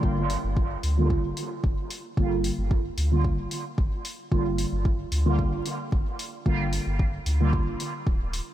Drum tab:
HH |-o-o-o-o|-o-o-o-o|-o-o-o-o|-o-o-o-o|
BD |o-o-o-o-|o-o-o-o-|o-o-o-o-|o-o-o-o-|